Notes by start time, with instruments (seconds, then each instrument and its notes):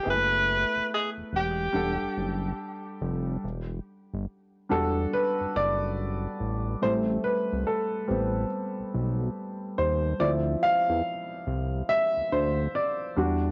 0.03 analog synth bass F#1, grand piano B3 E4 G#4
0.10 tenor saxophone B4
0.14 grand piano A3
0.75 analog synth bass E1
0.94 tenor saxophone G#4
1.17 analog synth bass E1
1.33 analog synth bass E1, tenor saxophone G4
1.72 analog synth bass E1, grand piano G3 D4 A4 F#5
2.02 analog synth bass F#1
2.17 analog synth bass F#1
3.02 analog synth bass F1
3.44 analog synth bass E1
4.14 analog synth bass G1
4.69 analog synth bass E1, grand piano G3 D4 F#4 A4
5.13 grand piano B4
5.41 analog synth bass F#1
5.56 analog synth bass F#1, grand piano D5
6.40 analog synth bass A1
6.82 analog synth bass A1, grand piano G3 A3 C4 C5
7.24 grand piano B4
7.53 analog synth bass C2
7.67 grand piano A4
8.08 analog synth bass A1, grand piano G3 B3 C4
8.79 analog synth bass B1
8.94 analog synth bass B1
9.78 analog synth bass D#2, grand piano C5
10.20 analog synth bass D2, grand piano F3 C4 E4 D5
10.63 grand piano F5
10.90 analog synth bass E2
11.47 analog synth bass C2
11.89 grand piano E5
12.17 analog synth bass D2
12.32 analog synth bass D2, grand piano C5
12.75 grand piano D5
13.16 analog synth bass E2, grand piano G3 D4 F#4